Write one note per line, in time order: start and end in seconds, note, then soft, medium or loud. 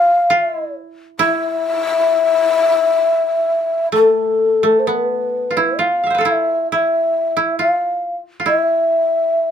0.00 0.30 F4 medium
0.00 0.73 F5 loud
0.30 0.54 F4 medium
0.54 1.19 E4 medium
1.19 3.88 E4 medium
1.19 3.88 E5 loud
3.92 4.63 A3 medium
3.92 4.81 A4 medium
4.63 7.52 A3 medium
4.79 4.88 C5 medium
4.87 6.16 B3 medium
4.87 5.03 A#4 medium
5.03 5.81 B4 medium
5.51 5.63 F4 soft
5.57 5.85 E4 medium
5.79 6.20 F4 medium
5.79 6.27 F5 medium
6.04 6.27 E5 soft
6.04 6.31 F5 soft
6.10 7.82 C5 soft
6.15 8.09 A4 soft
6.15 7.92 B4 soft
6.21 6.78 F4 soft
6.25 6.72 E4 medium
6.25 6.32 F5 medium
6.31 6.71 E5 medium
6.72 7.36 E4 medium
6.72 7.56 E5 medium
7.37 7.65 E4 medium
7.59 8.39 F4 medium
7.59 8.16 F5 medium
8.40 8.52 F4 soft
8.46 9.51 E4 medium
8.46 9.51 E5 medium